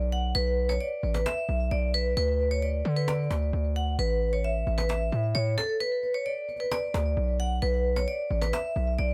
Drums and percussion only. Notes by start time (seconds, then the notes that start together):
0.12 cajon slap
0.35 cajon slap
0.69 cajon slap
0.81 cajon slap
1.03 cajon slap
1.15 cajon slap
1.26 cajon slap
1.49 cajon slap
1.71 cajon slap
1.94 cajon slap
2.17 cajon slap
2.40 cajon slap
2.62 cajon slap
2.85 cajon slap
2.93 cajon slap
3.00 cajon slap
3.08 cajon slap
3.23 cajon slap
3.31 cajon slap
3.53 cajon slap
3.76 cajon slap
3.99 cajon slap
4.44 cajon slap
4.67 cajon slap
4.73 cajon slap
4.78 cajon slap
4.84 cajon slap
4.90 cajon slap
5.12 cajon slap
5.58 cajon slap
5.81 cajon slap
6.03 cajon slap
6.26 cajon slap
6.49 cajon slap
6.56 cajon slap
6.64 cajon slap
6.72 cajon slap
6.79 cajon slap
6.87 cajon slap
6.94 cajon slap
7.17 cajon slap
7.40 cajon slap
7.62 cajon slap
7.96 cajon slap
8.08 cajon slap
8.31 cajon slap
8.42 cajon slap
8.53 cajon slap
8.76 cajon slap
8.99 cajon slap